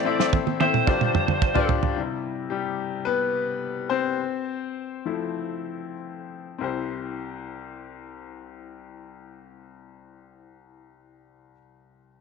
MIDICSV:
0, 0, Header, 1, 4, 480
1, 0, Start_track
1, 0, Key_signature, 0, "major"
1, 0, Tempo, 547445
1, 1724, Time_signature, 4, 2, 24, 8
1, 3175, Tempo, 581395
1, 4615, Tempo, 621762
1, 5575, Tempo, 643087
1, 9754, End_track
2, 0, Start_track
2, 0, Title_t, "Lead electric guitar"
2, 0, Program_c, 0, 29
2, 0, Note_on_c, 0, 74, 96
2, 266, Note_off_c, 0, 74, 0
2, 534, Note_on_c, 0, 72, 117
2, 1452, Note_off_c, 0, 72, 0
2, 9754, End_track
3, 0, Start_track
3, 0, Title_t, "Upright piano"
3, 0, Program_c, 1, 0
3, 0, Control_c, 1, 64, 127
3, 0, Note_on_c, 1, 33, 69
3, 0, Note_on_c, 1, 45, 65
3, 0, Note_on_c, 1, 60, 77
3, 0, Note_on_c, 1, 64, 66
3, 0, Note_on_c, 1, 69, 71
3, 0, Note_on_c, 1, 72, 67
3, 0, Note_on_c, 1, 76, 81
3, 44, Note_off_c, 1, 60, 0
3, 44, Note_on_c, 1, 60, 76
3, 48, Note_off_c, 1, 64, 0
3, 48, Note_on_c, 1, 64, 69
3, 49, Note_off_c, 1, 69, 0
3, 49, Note_on_c, 1, 69, 73
3, 52, Note_off_c, 1, 72, 0
3, 52, Note_on_c, 1, 72, 66
3, 55, Note_off_c, 1, 76, 0
3, 55, Note_on_c, 1, 76, 85
3, 152, Note_off_c, 1, 60, 0
3, 154, Note_off_c, 1, 64, 0
3, 156, Note_off_c, 1, 69, 0
3, 160, Note_off_c, 1, 72, 0
3, 162, Note_off_c, 1, 76, 0
3, 165, Note_on_c, 1, 60, 84
3, 167, Note_on_c, 1, 64, 74
3, 169, Note_on_c, 1, 69, 79
3, 173, Note_on_c, 1, 72, 76
3, 176, Note_on_c, 1, 76, 92
3, 493, Note_off_c, 1, 60, 0
3, 494, Note_off_c, 1, 64, 0
3, 495, Note_off_c, 1, 69, 0
3, 497, Note_off_c, 1, 72, 0
3, 499, Note_off_c, 1, 76, 0
3, 525, Note_on_c, 1, 60, 80
3, 527, Note_on_c, 1, 64, 71
3, 529, Note_on_c, 1, 69, 72
3, 533, Note_on_c, 1, 72, 71
3, 536, Note_on_c, 1, 76, 90
3, 732, Note_off_c, 1, 33, 0
3, 732, Note_off_c, 1, 45, 0
3, 755, Note_off_c, 1, 72, 0
3, 759, Note_on_c, 1, 62, 82
3, 764, Note_on_c, 1, 65, 75
3, 766, Note_off_c, 1, 60, 0
3, 766, Note_on_c, 1, 31, 67
3, 766, Note_on_c, 1, 43, 69
3, 766, Note_on_c, 1, 67, 74
3, 768, Note_off_c, 1, 64, 0
3, 768, Note_off_c, 1, 69, 0
3, 768, Note_on_c, 1, 72, 73
3, 772, Note_off_c, 1, 76, 0
3, 772, Note_on_c, 1, 74, 92
3, 780, Control_c, 1, 64, 0
3, 941, Control_c, 1, 64, 127
3, 1304, Note_off_c, 1, 62, 0
3, 1307, Note_off_c, 1, 65, 0
3, 1308, Note_off_c, 1, 67, 0
3, 1309, Note_off_c, 1, 72, 0
3, 1311, Note_off_c, 1, 74, 0
3, 1353, Note_on_c, 1, 62, 88
3, 1355, Note_on_c, 1, 65, 83
3, 1359, Note_on_c, 1, 67, 79
3, 1362, Note_on_c, 1, 72, 76
3, 1366, Note_on_c, 1, 74, 100
3, 1684, Note_off_c, 1, 62, 0
3, 1685, Note_off_c, 1, 65, 0
3, 1687, Note_off_c, 1, 31, 0
3, 1687, Note_off_c, 1, 43, 0
3, 1687, Note_off_c, 1, 67, 0
3, 1689, Note_off_c, 1, 72, 0
3, 1691, Note_off_c, 1, 74, 0
3, 1721, Note_on_c, 1, 48, 50
3, 1724, Note_on_c, 1, 55, 44
3, 1728, Note_on_c, 1, 64, 50
3, 1736, Control_c, 1, 64, 0
3, 1863, Control_c, 1, 64, 127
3, 2192, Note_on_c, 1, 67, 67
3, 2193, Note_off_c, 1, 55, 0
3, 2207, Note_on_c, 1, 55, 56
3, 2407, Note_off_c, 1, 48, 0
3, 2411, Note_off_c, 1, 64, 0
3, 2654, Note_off_c, 1, 55, 0
3, 2675, Note_on_c, 1, 71, 88
3, 2690, Note_on_c, 1, 59, 69
3, 2695, Note_off_c, 1, 67, 0
3, 3378, Note_off_c, 1, 59, 0
3, 3402, Note_on_c, 1, 72, 81
3, 3411, Note_on_c, 1, 60, 68
3, 3425, Note_off_c, 1, 71, 0
3, 3655, Control_c, 1, 64, 0
3, 3815, Control_c, 1, 64, 127
3, 4359, Note_on_c, 1, 53, 45
3, 4364, Note_on_c, 1, 57, 40
3, 4369, Note_on_c, 1, 64, 48
3, 5052, Note_off_c, 1, 53, 0
3, 5053, Note_off_c, 1, 72, 0
3, 5055, Note_off_c, 1, 57, 0
3, 5057, Note_off_c, 1, 64, 0
3, 5058, Note_off_c, 1, 60, 0
3, 5555, Note_on_c, 1, 60, 57
3, 5569, Note_on_c, 1, 64, 51
3, 5574, Note_on_c, 1, 36, 58
3, 5582, Note_on_c, 1, 67, 53
3, 5586, Control_c, 1, 64, 0
3, 5597, Note_on_c, 1, 72, 61
3, 5701, Control_c, 1, 64, 127
3, 9232, Note_off_c, 1, 60, 0
3, 9245, Note_off_c, 1, 64, 0
3, 9250, Note_off_c, 1, 36, 0
3, 9258, Note_off_c, 1, 67, 0
3, 9273, Note_off_c, 1, 72, 0
3, 9754, End_track
4, 0, Start_track
4, 0, Title_t, "Drums"
4, 174, Note_on_c, 9, 38, 69
4, 261, Note_off_c, 9, 38, 0
4, 289, Note_on_c, 9, 36, 119
4, 291, Note_on_c, 9, 48, 73
4, 377, Note_off_c, 9, 36, 0
4, 379, Note_off_c, 9, 48, 0
4, 412, Note_on_c, 9, 48, 70
4, 500, Note_off_c, 9, 48, 0
4, 531, Note_on_c, 9, 48, 91
4, 619, Note_off_c, 9, 48, 0
4, 650, Note_on_c, 9, 47, 78
4, 737, Note_off_c, 9, 47, 0
4, 767, Note_on_c, 9, 36, 111
4, 854, Note_off_c, 9, 36, 0
4, 887, Note_on_c, 9, 47, 75
4, 975, Note_off_c, 9, 47, 0
4, 1006, Note_on_c, 9, 45, 99
4, 1094, Note_off_c, 9, 45, 0
4, 1125, Note_on_c, 9, 45, 87
4, 1213, Note_off_c, 9, 45, 0
4, 1245, Note_on_c, 9, 36, 115
4, 1332, Note_off_c, 9, 36, 0
4, 1364, Note_on_c, 9, 43, 96
4, 1451, Note_off_c, 9, 43, 0
4, 1482, Note_on_c, 9, 43, 112
4, 1570, Note_off_c, 9, 43, 0
4, 1603, Note_on_c, 9, 43, 101
4, 1691, Note_off_c, 9, 43, 0
4, 9754, End_track
0, 0, End_of_file